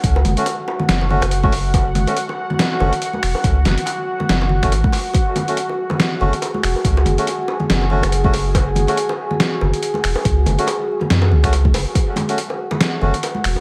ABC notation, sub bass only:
X:1
M:4/4
L:1/16
Q:"Swing 16ths" 1/4=141
K:F#m
V:1 name="Sub bass" clef=bass
C,,2 F,,, z4 z F,,,3 F,,,4- F,,,- | F,,,3 z6 z F,,, z3 E,,, z | C,,2 F,,, z4 z F,,,3 F,,, A,,, z3 | z8 z2 F,,, z3 E,,, z |
C,,2 F,,, z4 z F,,,3 F,,,4- F,,,- | F,,,3 z6 z F,,, z3 E,,, z | C,,2 F,,, z4 z F,,2 C,,4 F,,, z | z8 z2 F,,, z3 E,,, z |]